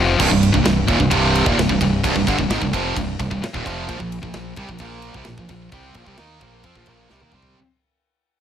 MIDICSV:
0, 0, Header, 1, 6, 480
1, 0, Start_track
1, 0, Tempo, 460829
1, 203, Time_signature, 4, 2, 24, 8
1, 8750, End_track
2, 0, Start_track
2, 0, Title_t, "Distorted electric guitar"
2, 0, Program_c, 0, 30
2, 0, Note_on_c, 0, 41, 92
2, 0, Note_on_c, 0, 48, 95
2, 0, Note_on_c, 0, 53, 106
2, 177, Note_off_c, 0, 41, 0
2, 181, Note_on_c, 0, 36, 76
2, 187, Note_off_c, 0, 48, 0
2, 191, Note_on_c, 0, 43, 95
2, 194, Note_off_c, 0, 53, 0
2, 294, Note_off_c, 0, 36, 0
2, 296, Note_off_c, 0, 43, 0
2, 307, Note_on_c, 0, 36, 70
2, 309, Note_on_c, 0, 43, 66
2, 507, Note_off_c, 0, 36, 0
2, 508, Note_off_c, 0, 43, 0
2, 546, Note_on_c, 0, 36, 59
2, 548, Note_on_c, 0, 43, 78
2, 653, Note_off_c, 0, 43, 0
2, 657, Note_off_c, 0, 36, 0
2, 665, Note_on_c, 0, 43, 70
2, 669, Note_on_c, 0, 36, 67
2, 866, Note_off_c, 0, 43, 0
2, 868, Note_off_c, 0, 36, 0
2, 909, Note_on_c, 0, 39, 95
2, 914, Note_on_c, 0, 46, 107
2, 1029, Note_off_c, 0, 39, 0
2, 1031, Note_off_c, 0, 46, 0
2, 1036, Note_on_c, 0, 43, 64
2, 1039, Note_on_c, 0, 36, 65
2, 1134, Note_off_c, 0, 36, 0
2, 1141, Note_off_c, 0, 43, 0
2, 1146, Note_on_c, 0, 36, 94
2, 1154, Note_on_c, 0, 43, 103
2, 1165, Note_on_c, 0, 48, 104
2, 1508, Note_off_c, 0, 36, 0
2, 1511, Note_off_c, 0, 43, 0
2, 1517, Note_off_c, 0, 48, 0
2, 1529, Note_on_c, 0, 39, 86
2, 1541, Note_on_c, 0, 46, 107
2, 1639, Note_off_c, 0, 39, 0
2, 1645, Note_off_c, 0, 46, 0
2, 1656, Note_on_c, 0, 36, 61
2, 1662, Note_on_c, 0, 43, 66
2, 1757, Note_off_c, 0, 43, 0
2, 1760, Note_off_c, 0, 36, 0
2, 1769, Note_on_c, 0, 43, 73
2, 1772, Note_on_c, 0, 36, 64
2, 1886, Note_off_c, 0, 43, 0
2, 1888, Note_off_c, 0, 36, 0
2, 1897, Note_on_c, 0, 43, 77
2, 1898, Note_on_c, 0, 36, 67
2, 2082, Note_off_c, 0, 43, 0
2, 2083, Note_off_c, 0, 36, 0
2, 2122, Note_on_c, 0, 36, 89
2, 2133, Note_on_c, 0, 43, 106
2, 2231, Note_off_c, 0, 36, 0
2, 2235, Note_off_c, 0, 43, 0
2, 2243, Note_on_c, 0, 36, 68
2, 2247, Note_on_c, 0, 43, 64
2, 2353, Note_off_c, 0, 43, 0
2, 2361, Note_off_c, 0, 36, 0
2, 2365, Note_on_c, 0, 43, 105
2, 2375, Note_on_c, 0, 50, 116
2, 2477, Note_off_c, 0, 43, 0
2, 2482, Note_off_c, 0, 50, 0
2, 2492, Note_on_c, 0, 36, 70
2, 2496, Note_on_c, 0, 43, 72
2, 2608, Note_off_c, 0, 36, 0
2, 2610, Note_off_c, 0, 43, 0
2, 2617, Note_on_c, 0, 44, 92
2, 2627, Note_on_c, 0, 51, 118
2, 2723, Note_off_c, 0, 44, 0
2, 2728, Note_off_c, 0, 51, 0
2, 2734, Note_on_c, 0, 36, 79
2, 2737, Note_on_c, 0, 43, 79
2, 2844, Note_off_c, 0, 36, 0
2, 2848, Note_on_c, 0, 41, 94
2, 2850, Note_off_c, 0, 43, 0
2, 2857, Note_on_c, 0, 48, 111
2, 2864, Note_on_c, 0, 53, 110
2, 3077, Note_off_c, 0, 41, 0
2, 3082, Note_on_c, 0, 36, 63
2, 3083, Note_off_c, 0, 48, 0
2, 3087, Note_off_c, 0, 53, 0
2, 3089, Note_on_c, 0, 43, 76
2, 3275, Note_off_c, 0, 36, 0
2, 3278, Note_off_c, 0, 43, 0
2, 3328, Note_on_c, 0, 36, 62
2, 3332, Note_on_c, 0, 43, 75
2, 3427, Note_off_c, 0, 36, 0
2, 3431, Note_off_c, 0, 43, 0
2, 3439, Note_on_c, 0, 36, 77
2, 3444, Note_on_c, 0, 43, 79
2, 3551, Note_off_c, 0, 36, 0
2, 3564, Note_off_c, 0, 43, 0
2, 3684, Note_on_c, 0, 39, 92
2, 3700, Note_on_c, 0, 46, 99
2, 3796, Note_off_c, 0, 39, 0
2, 3800, Note_on_c, 0, 41, 98
2, 3802, Note_off_c, 0, 46, 0
2, 3807, Note_on_c, 0, 48, 103
2, 3814, Note_on_c, 0, 53, 101
2, 4035, Note_off_c, 0, 41, 0
2, 4036, Note_off_c, 0, 53, 0
2, 4038, Note_off_c, 0, 48, 0
2, 4039, Note_on_c, 0, 46, 96
2, 4048, Note_on_c, 0, 53, 100
2, 4137, Note_off_c, 0, 46, 0
2, 4145, Note_off_c, 0, 53, 0
2, 4149, Note_on_c, 0, 46, 73
2, 4157, Note_on_c, 0, 53, 72
2, 4349, Note_off_c, 0, 46, 0
2, 4353, Note_off_c, 0, 53, 0
2, 4393, Note_on_c, 0, 46, 67
2, 4402, Note_on_c, 0, 53, 78
2, 4511, Note_off_c, 0, 46, 0
2, 4516, Note_off_c, 0, 53, 0
2, 4523, Note_on_c, 0, 46, 64
2, 4528, Note_on_c, 0, 53, 75
2, 4716, Note_off_c, 0, 46, 0
2, 4718, Note_off_c, 0, 53, 0
2, 4758, Note_on_c, 0, 48, 97
2, 4772, Note_on_c, 0, 55, 103
2, 4874, Note_off_c, 0, 48, 0
2, 4881, Note_off_c, 0, 55, 0
2, 4903, Note_on_c, 0, 46, 63
2, 4904, Note_on_c, 0, 53, 74
2, 4989, Note_off_c, 0, 46, 0
2, 5000, Note_off_c, 0, 53, 0
2, 5001, Note_on_c, 0, 46, 99
2, 5013, Note_on_c, 0, 53, 97
2, 5024, Note_on_c, 0, 58, 106
2, 5355, Note_off_c, 0, 46, 0
2, 5361, Note_off_c, 0, 53, 0
2, 5366, Note_on_c, 0, 48, 92
2, 5367, Note_off_c, 0, 58, 0
2, 5374, Note_on_c, 0, 55, 120
2, 5478, Note_off_c, 0, 48, 0
2, 5482, Note_off_c, 0, 55, 0
2, 5493, Note_on_c, 0, 46, 62
2, 5504, Note_on_c, 0, 53, 66
2, 5601, Note_off_c, 0, 53, 0
2, 5602, Note_off_c, 0, 46, 0
2, 5614, Note_on_c, 0, 53, 69
2, 5615, Note_on_c, 0, 46, 65
2, 5717, Note_off_c, 0, 46, 0
2, 5725, Note_off_c, 0, 53, 0
2, 5730, Note_on_c, 0, 46, 59
2, 5738, Note_on_c, 0, 53, 77
2, 5919, Note_off_c, 0, 46, 0
2, 5923, Note_off_c, 0, 53, 0
2, 5956, Note_on_c, 0, 48, 83
2, 5968, Note_on_c, 0, 55, 90
2, 5975, Note_on_c, 0, 60, 108
2, 6193, Note_off_c, 0, 48, 0
2, 6197, Note_on_c, 0, 46, 104
2, 6199, Note_off_c, 0, 55, 0
2, 6202, Note_off_c, 0, 60, 0
2, 6207, Note_on_c, 0, 53, 110
2, 6300, Note_off_c, 0, 53, 0
2, 6304, Note_on_c, 0, 48, 96
2, 6313, Note_off_c, 0, 46, 0
2, 6316, Note_on_c, 0, 55, 106
2, 6425, Note_off_c, 0, 48, 0
2, 6429, Note_on_c, 0, 51, 86
2, 6432, Note_off_c, 0, 55, 0
2, 6446, Note_on_c, 0, 58, 99
2, 6454, Note_on_c, 0, 63, 98
2, 6662, Note_on_c, 0, 46, 104
2, 6666, Note_off_c, 0, 58, 0
2, 6669, Note_off_c, 0, 51, 0
2, 6675, Note_on_c, 0, 53, 102
2, 6678, Note_on_c, 0, 58, 103
2, 6681, Note_off_c, 0, 63, 0
2, 6905, Note_off_c, 0, 46, 0
2, 6906, Note_off_c, 0, 53, 0
2, 6913, Note_off_c, 0, 58, 0
2, 6918, Note_on_c, 0, 53, 104
2, 6932, Note_on_c, 0, 60, 117
2, 7033, Note_off_c, 0, 53, 0
2, 7040, Note_off_c, 0, 60, 0
2, 7040, Note_on_c, 0, 46, 99
2, 7049, Note_on_c, 0, 53, 106
2, 7145, Note_off_c, 0, 46, 0
2, 7153, Note_off_c, 0, 53, 0
2, 7158, Note_on_c, 0, 46, 82
2, 7166, Note_on_c, 0, 53, 81
2, 7173, Note_on_c, 0, 58, 94
2, 7393, Note_off_c, 0, 46, 0
2, 7396, Note_off_c, 0, 53, 0
2, 7400, Note_off_c, 0, 58, 0
2, 7400, Note_on_c, 0, 48, 90
2, 7406, Note_on_c, 0, 55, 103
2, 7509, Note_off_c, 0, 48, 0
2, 7513, Note_on_c, 0, 51, 96
2, 7517, Note_off_c, 0, 55, 0
2, 7524, Note_on_c, 0, 58, 115
2, 7630, Note_off_c, 0, 51, 0
2, 7636, Note_off_c, 0, 58, 0
2, 7641, Note_on_c, 0, 48, 90
2, 7648, Note_on_c, 0, 55, 98
2, 7654, Note_on_c, 0, 60, 98
2, 7874, Note_off_c, 0, 48, 0
2, 7878, Note_off_c, 0, 55, 0
2, 7880, Note_off_c, 0, 60, 0
2, 8750, End_track
3, 0, Start_track
3, 0, Title_t, "Fingered electric bass"
3, 0, Program_c, 1, 33
3, 0, Note_on_c, 1, 29, 98
3, 192, Note_off_c, 1, 29, 0
3, 205, Note_on_c, 1, 24, 87
3, 316, Note_off_c, 1, 24, 0
3, 327, Note_on_c, 1, 24, 83
3, 549, Note_off_c, 1, 24, 0
3, 562, Note_on_c, 1, 24, 86
3, 674, Note_off_c, 1, 24, 0
3, 680, Note_on_c, 1, 24, 80
3, 905, Note_off_c, 1, 24, 0
3, 918, Note_on_c, 1, 27, 96
3, 1032, Note_off_c, 1, 27, 0
3, 1048, Note_on_c, 1, 24, 94
3, 1157, Note_off_c, 1, 24, 0
3, 1162, Note_on_c, 1, 24, 96
3, 1497, Note_off_c, 1, 24, 0
3, 1520, Note_on_c, 1, 27, 99
3, 1627, Note_off_c, 1, 27, 0
3, 1633, Note_on_c, 1, 24, 77
3, 1749, Note_off_c, 1, 24, 0
3, 1766, Note_on_c, 1, 24, 85
3, 1876, Note_off_c, 1, 24, 0
3, 1886, Note_on_c, 1, 24, 79
3, 2108, Note_off_c, 1, 24, 0
3, 2134, Note_on_c, 1, 24, 90
3, 2241, Note_off_c, 1, 24, 0
3, 2249, Note_on_c, 1, 24, 82
3, 2358, Note_off_c, 1, 24, 0
3, 2369, Note_on_c, 1, 31, 98
3, 2478, Note_off_c, 1, 31, 0
3, 2484, Note_on_c, 1, 24, 92
3, 2595, Note_off_c, 1, 24, 0
3, 2605, Note_on_c, 1, 32, 107
3, 2716, Note_off_c, 1, 32, 0
3, 2727, Note_on_c, 1, 24, 83
3, 2837, Note_off_c, 1, 24, 0
3, 2852, Note_on_c, 1, 29, 101
3, 3072, Note_off_c, 1, 29, 0
3, 3094, Note_on_c, 1, 24, 84
3, 3312, Note_off_c, 1, 24, 0
3, 3337, Note_on_c, 1, 24, 84
3, 3443, Note_off_c, 1, 24, 0
3, 3454, Note_on_c, 1, 24, 89
3, 3561, Note_off_c, 1, 24, 0
3, 3689, Note_on_c, 1, 27, 99
3, 3798, Note_off_c, 1, 27, 0
3, 3810, Note_on_c, 1, 29, 98
3, 4030, Note_off_c, 1, 29, 0
3, 4052, Note_on_c, 1, 34, 94
3, 4160, Note_off_c, 1, 34, 0
3, 4168, Note_on_c, 1, 34, 89
3, 4390, Note_off_c, 1, 34, 0
3, 4405, Note_on_c, 1, 34, 84
3, 4516, Note_off_c, 1, 34, 0
3, 4535, Note_on_c, 1, 34, 91
3, 4753, Note_off_c, 1, 34, 0
3, 4762, Note_on_c, 1, 36, 106
3, 4874, Note_off_c, 1, 36, 0
3, 4887, Note_on_c, 1, 34, 87
3, 4995, Note_off_c, 1, 34, 0
3, 5001, Note_on_c, 1, 34, 99
3, 5337, Note_off_c, 1, 34, 0
3, 5358, Note_on_c, 1, 36, 105
3, 5472, Note_off_c, 1, 36, 0
3, 5484, Note_on_c, 1, 34, 71
3, 5596, Note_off_c, 1, 34, 0
3, 5602, Note_on_c, 1, 34, 83
3, 5714, Note_off_c, 1, 34, 0
3, 5722, Note_on_c, 1, 34, 93
3, 5946, Note_off_c, 1, 34, 0
3, 5966, Note_on_c, 1, 36, 92
3, 6188, Note_off_c, 1, 36, 0
3, 6197, Note_on_c, 1, 34, 99
3, 6311, Note_off_c, 1, 34, 0
3, 6322, Note_on_c, 1, 36, 100
3, 6434, Note_off_c, 1, 36, 0
3, 6440, Note_on_c, 1, 39, 98
3, 6664, Note_off_c, 1, 39, 0
3, 6678, Note_on_c, 1, 34, 95
3, 6903, Note_off_c, 1, 34, 0
3, 6918, Note_on_c, 1, 41, 107
3, 7032, Note_off_c, 1, 41, 0
3, 7041, Note_on_c, 1, 34, 106
3, 7148, Note_off_c, 1, 34, 0
3, 7154, Note_on_c, 1, 34, 99
3, 7381, Note_off_c, 1, 34, 0
3, 7405, Note_on_c, 1, 36, 99
3, 7513, Note_off_c, 1, 36, 0
3, 7519, Note_on_c, 1, 39, 85
3, 7632, Note_off_c, 1, 39, 0
3, 7643, Note_on_c, 1, 36, 108
3, 7865, Note_off_c, 1, 36, 0
3, 8750, End_track
4, 0, Start_track
4, 0, Title_t, "Muted distorted electric guitar strokes"
4, 3564, Note_on_c, 9, 29, 59
4, 3668, Note_off_c, 9, 29, 0
4, 8750, End_track
5, 0, Start_track
5, 0, Title_t, "Muted fingered electric bass strokes"
5, 3575, Note_on_c, 9, 29, 43
5, 3679, Note_off_c, 9, 29, 0
5, 8750, End_track
6, 0, Start_track
6, 0, Title_t, "Drums"
6, 206, Note_on_c, 9, 36, 116
6, 213, Note_on_c, 9, 49, 118
6, 310, Note_off_c, 9, 36, 0
6, 317, Note_off_c, 9, 49, 0
6, 326, Note_on_c, 9, 36, 92
6, 430, Note_off_c, 9, 36, 0
6, 447, Note_on_c, 9, 51, 77
6, 551, Note_off_c, 9, 51, 0
6, 563, Note_on_c, 9, 36, 90
6, 667, Note_off_c, 9, 36, 0
6, 681, Note_on_c, 9, 51, 97
6, 683, Note_on_c, 9, 38, 98
6, 786, Note_off_c, 9, 51, 0
6, 788, Note_off_c, 9, 38, 0
6, 920, Note_on_c, 9, 36, 117
6, 920, Note_on_c, 9, 51, 77
6, 1024, Note_off_c, 9, 51, 0
6, 1025, Note_off_c, 9, 36, 0
6, 1041, Note_on_c, 9, 36, 77
6, 1145, Note_off_c, 9, 36, 0
6, 1160, Note_on_c, 9, 36, 111
6, 1160, Note_on_c, 9, 51, 118
6, 1264, Note_off_c, 9, 36, 0
6, 1264, Note_off_c, 9, 51, 0
6, 1411, Note_on_c, 9, 51, 74
6, 1515, Note_off_c, 9, 51, 0
6, 1524, Note_on_c, 9, 36, 104
6, 1628, Note_off_c, 9, 36, 0
6, 1656, Note_on_c, 9, 51, 115
6, 1658, Note_on_c, 9, 38, 105
6, 1760, Note_off_c, 9, 51, 0
6, 1762, Note_off_c, 9, 38, 0
6, 1764, Note_on_c, 9, 36, 90
6, 1868, Note_off_c, 9, 36, 0
6, 1884, Note_on_c, 9, 36, 97
6, 1889, Note_on_c, 9, 51, 85
6, 1988, Note_off_c, 9, 36, 0
6, 1993, Note_off_c, 9, 51, 0
6, 2126, Note_on_c, 9, 36, 122
6, 2133, Note_on_c, 9, 51, 119
6, 2230, Note_off_c, 9, 36, 0
6, 2237, Note_off_c, 9, 51, 0
6, 2247, Note_on_c, 9, 36, 83
6, 2351, Note_off_c, 9, 36, 0
6, 2365, Note_on_c, 9, 36, 90
6, 2376, Note_on_c, 9, 51, 86
6, 2469, Note_off_c, 9, 36, 0
6, 2480, Note_off_c, 9, 51, 0
6, 2484, Note_on_c, 9, 36, 79
6, 2589, Note_off_c, 9, 36, 0
6, 2609, Note_on_c, 9, 51, 96
6, 2611, Note_on_c, 9, 38, 104
6, 2713, Note_off_c, 9, 51, 0
6, 2715, Note_off_c, 9, 38, 0
6, 2725, Note_on_c, 9, 36, 95
6, 2829, Note_off_c, 9, 36, 0
6, 2847, Note_on_c, 9, 36, 90
6, 2854, Note_on_c, 9, 51, 80
6, 2952, Note_off_c, 9, 36, 0
6, 2959, Note_off_c, 9, 51, 0
6, 3088, Note_on_c, 9, 36, 105
6, 3094, Note_on_c, 9, 51, 109
6, 3192, Note_off_c, 9, 36, 0
6, 3198, Note_off_c, 9, 51, 0
6, 3329, Note_on_c, 9, 36, 106
6, 3336, Note_on_c, 9, 51, 70
6, 3433, Note_off_c, 9, 36, 0
6, 3440, Note_off_c, 9, 51, 0
6, 3450, Note_on_c, 9, 36, 83
6, 3554, Note_off_c, 9, 36, 0
6, 3579, Note_on_c, 9, 51, 96
6, 3581, Note_on_c, 9, 38, 102
6, 3683, Note_off_c, 9, 51, 0
6, 3685, Note_off_c, 9, 38, 0
6, 3690, Note_on_c, 9, 36, 112
6, 3794, Note_off_c, 9, 36, 0
6, 3811, Note_on_c, 9, 36, 93
6, 3821, Note_on_c, 9, 51, 77
6, 3915, Note_off_c, 9, 36, 0
6, 3925, Note_off_c, 9, 51, 0
6, 4049, Note_on_c, 9, 36, 109
6, 4051, Note_on_c, 9, 51, 102
6, 4153, Note_off_c, 9, 36, 0
6, 4155, Note_off_c, 9, 51, 0
6, 4167, Note_on_c, 9, 36, 88
6, 4271, Note_off_c, 9, 36, 0
6, 4292, Note_on_c, 9, 51, 78
6, 4396, Note_off_c, 9, 51, 0
6, 4405, Note_on_c, 9, 36, 86
6, 4509, Note_off_c, 9, 36, 0
6, 4518, Note_on_c, 9, 51, 95
6, 4520, Note_on_c, 9, 38, 110
6, 4622, Note_off_c, 9, 51, 0
6, 4624, Note_off_c, 9, 38, 0
6, 4752, Note_on_c, 9, 51, 78
6, 4763, Note_on_c, 9, 36, 110
6, 4856, Note_off_c, 9, 51, 0
6, 4867, Note_off_c, 9, 36, 0
6, 4882, Note_on_c, 9, 36, 89
6, 4984, Note_on_c, 9, 51, 115
6, 4986, Note_off_c, 9, 36, 0
6, 4999, Note_on_c, 9, 36, 108
6, 5088, Note_off_c, 9, 51, 0
6, 5104, Note_off_c, 9, 36, 0
6, 5231, Note_on_c, 9, 51, 77
6, 5335, Note_off_c, 9, 51, 0
6, 5358, Note_on_c, 9, 36, 103
6, 5462, Note_off_c, 9, 36, 0
6, 5465, Note_on_c, 9, 51, 110
6, 5467, Note_on_c, 9, 38, 113
6, 5569, Note_off_c, 9, 51, 0
6, 5572, Note_off_c, 9, 38, 0
6, 5600, Note_on_c, 9, 36, 91
6, 5705, Note_off_c, 9, 36, 0
6, 5716, Note_on_c, 9, 51, 87
6, 5720, Note_on_c, 9, 36, 83
6, 5820, Note_off_c, 9, 51, 0
6, 5825, Note_off_c, 9, 36, 0
6, 5956, Note_on_c, 9, 51, 113
6, 5960, Note_on_c, 9, 36, 119
6, 6060, Note_off_c, 9, 51, 0
6, 6064, Note_off_c, 9, 36, 0
6, 6192, Note_on_c, 9, 51, 91
6, 6199, Note_on_c, 9, 36, 107
6, 6296, Note_off_c, 9, 51, 0
6, 6303, Note_off_c, 9, 36, 0
6, 6317, Note_on_c, 9, 36, 79
6, 6421, Note_off_c, 9, 36, 0
6, 6432, Note_on_c, 9, 51, 108
6, 6434, Note_on_c, 9, 38, 104
6, 6536, Note_off_c, 9, 51, 0
6, 6538, Note_off_c, 9, 38, 0
6, 6675, Note_on_c, 9, 51, 76
6, 6679, Note_on_c, 9, 36, 103
6, 6779, Note_off_c, 9, 51, 0
6, 6783, Note_off_c, 9, 36, 0
6, 6911, Note_on_c, 9, 51, 117
6, 6916, Note_on_c, 9, 36, 114
6, 7015, Note_off_c, 9, 51, 0
6, 7020, Note_off_c, 9, 36, 0
6, 7036, Note_on_c, 9, 36, 88
6, 7140, Note_off_c, 9, 36, 0
6, 7144, Note_on_c, 9, 51, 87
6, 7154, Note_on_c, 9, 36, 83
6, 7248, Note_off_c, 9, 51, 0
6, 7259, Note_off_c, 9, 36, 0
6, 7390, Note_on_c, 9, 38, 61
6, 7494, Note_off_c, 9, 38, 0
6, 7503, Note_on_c, 9, 48, 65
6, 7607, Note_off_c, 9, 48, 0
6, 7621, Note_on_c, 9, 45, 90
6, 7726, Note_off_c, 9, 45, 0
6, 7733, Note_on_c, 9, 43, 95
6, 7838, Note_off_c, 9, 43, 0
6, 8750, End_track
0, 0, End_of_file